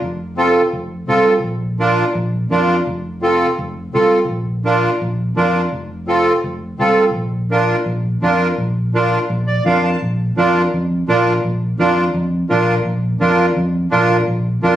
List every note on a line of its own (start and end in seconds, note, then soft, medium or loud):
0.02 0.59 F1 medium
0.37 0.62 C4 medium
0.37 0.62 F4 medium
0.37 0.62 A4 medium
0.73 1.02 F1 medium
1.08 1.37 C2 medium
1.08 1.33 C4 medium
1.08 1.34 F4 medium
1.08 1.34 A4 medium
1.44 2.01 A#1 medium
1.79 2.05 D4 medium
1.79 2.05 F4 medium
1.79 2.05 A#4 medium
2.15 2.44 A#1 medium
2.51 2.80 F2 medium
2.51 2.76 D4 medium
2.51 2.76 F4 medium
2.51 2.76 A#4 medium
2.87 3.44 F1 medium
3.22 3.47 C4 medium
3.22 3.47 F4 medium
3.22 3.48 A4 medium
3.59 3.87 F1 medium
3.94 4.23 C2 medium
3.94 4.19 C4 medium
3.94 4.19 F4 medium
3.94 4.19 A4 medium
4.29 4.87 A#1 medium
4.65 4.90 D4 medium
4.65 4.90 F4 medium
4.65 4.91 A#4 medium
5.02 5.30 A#1 loud
5.36 5.65 F2 medium
5.36 5.62 D4 medium
5.36 5.62 F4 medium
5.36 5.62 A#4 medium
5.72 6.30 F1 medium
6.07 6.33 C4 medium
6.07 6.33 F4 medium
6.07 6.33 A4 medium
6.44 6.72 F1 loud
6.79 7.08 C2 medium
6.79 7.04 C4 medium
6.79 7.05 F4 medium
6.79 7.05 A4 medium
7.14 7.72 A#1 medium
7.51 7.76 D4 medium
7.51 7.76 F4 medium
7.51 7.76 A#4 medium
7.86 8.15 A#1 medium
8.22 8.51 F2 loud
8.22 8.47 D4 medium
8.22 8.47 F4 medium
8.22 8.48 A#4 medium
8.58 9.15 A#1 medium
8.94 9.19 D4 medium
8.94 9.19 F4 medium
8.94 9.20 A#4 medium
9.30 9.58 A#1 medium
9.47 9.64 D5 medium
9.65 9.94 F2 loud
9.65 9.90 D4 medium
9.65 9.90 F4 medium
9.65 9.91 A#4 medium
9.65 9.82 F5 medium
9.84 10.00 A5 medium
10.02 10.30 A#1 medium
10.37 10.66 F2 loud
10.37 10.62 D4 medium
10.37 10.62 F4 medium
10.37 10.62 A#4 medium
10.74 11.02 F2 medium
11.08 11.37 A#1 loud
11.08 11.33 D4 medium
11.08 11.33 F4 medium
11.08 11.34 A#4 medium
11.44 11.72 A#1 medium
11.79 12.08 F2 loud
11.79 12.04 D4 medium
11.79 12.04 F4 medium
11.79 12.04 A#4 medium
12.14 12.43 F2 medium
12.49 12.79 A#1 loud
12.49 12.75 D4 medium
12.49 12.75 F4 medium
12.49 12.75 A#4 medium
12.85 13.14 A#1 medium
13.20 13.50 F2 loud
13.20 13.46 D4 medium
13.20 13.46 F4 medium
13.20 13.46 A#4 medium
13.56 13.85 F2 medium
13.91 14.21 A#1 loud
13.91 14.17 D4 medium
13.91 14.17 F4 medium
13.91 14.17 A#4 medium
14.28 14.56 A#1 medium
14.63 14.76 F2 loud
14.63 14.76 D4 medium
14.63 14.76 F4 medium
14.63 14.76 A#4 medium